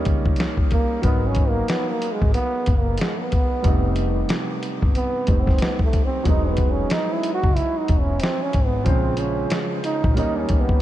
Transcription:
Already playing: G3 A#3 C#4 D#4
0.05 C#2, kick, closed hi-hat
0.26 kick
0.36 snare, closed hi-hat
0.57 kick
0.71 A#3, kick, closed hi-hat
1.02 G#1 F#3 B3 A#4, kick, closed hi-hat
1.07 D#4
1.27 C#4
1.35 kick, closed hi-hat
1.49 A#3
1.68 B3, snare, closed hi-hat
1.90 A#3
2.02 closed hi-hat
2.12 G#3
2.22 G#1, kick
2.34 B3, closed hi-hat
2.66 F#1, kick, closed hi-hat
2.79 A#3
2.98 G#3, snare, closed hi-hat
3.22 B3
3.32 kick, closed hi-hat
3.62 F1 C3 G3 A3, kick, closed hi-hat
3.67 D#4
3.96 closed hi-hat
4.29 snare, closed hi-hat
4.63 closed hi-hat
4.82 G1, kick
4.95 B3, closed hi-hat
5.27 F1 G3 A3 C4 D#4, kick, closed hi-hat
5.41 C4
5.47 kick, snare
5.58 B3, snare, closed hi-hat
5.79 kick
5.84 A3
5.93 kick, closed hi-hat
6.06 C4
6.24 E1 F#3 G#3 B3 D#4, kick, closed hi-hat
6.28 D#4
6.49 B3
6.57 kick, closed hi-hat
6.71 C#4
6.90 D#4, snare, closed hi-hat
7.13 E4
7.23 closed hi-hat
7.34 F#4
7.43 F#1, kick
7.56 E4, closed hi-hat
7.78 D#4
7.88 E1, kick, closed hi-hat
8.00 C#4
8.20 C4, snare, closed hi-hat
8.43 C#4
8.53 G#1, kick, closed hi-hat
8.65 B3
8.84 A#1 F3 G#3 C4 C5, kick, closed hi-hat
8.89 C#3
9.17 C#4, closed hi-hat
9.50 snare, closed hi-hat
9.84 D#4, closed hi-hat
10.04 A#1, kick
10.14 D#2 G3 A#3 C#4 D#4, closed hi-hat
10.19 D#4
10.39 C#4
10.49 D#2, kick, closed hi-hat
10.60 B3
10.69 kick

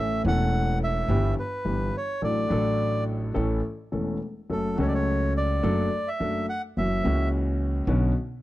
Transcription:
Already playing: A1 A2 E3 A3 C#4 A4 E5
0.24 E1 E2 E3 A3 C#4 A4 F#5
0.84 E5
1.08 G1 G2 E3 G3 B3 G4
1.39 B4
1.65 G1 G2 E3 G3 B3 G4
1.97 C#5
2.21 A1 A2 F#3 A3 D4 A4 D5
2.48 A1 A2 F#3 A3 D4 A4
3.34 A1 A2 E3 A3 C#4 A4
3.92 E1 E2 E3 A3 C#4 A4
4.49 F#1 F#2 F#3 A3 C#4 A4
4.76 C#2 C#3 F#3 A3 C#4
4.80 A4 C#5
4.88 D5
4.95 C#5
5.37 D5
5.63 F#1 F#2 F#3 A3 D4 A4
6.08 E5
6.19 F#1 F#2 F#3 A3 D4 A4
6.49 F#5
6.77 F#1 F#2 E3 F#3 A#3 C#4 F#4 E5
7.03 C#2 C#3 E3 A#3 C#4
7.07 F#4
7.87 B1 B2 D3 B3 C#4 F#4

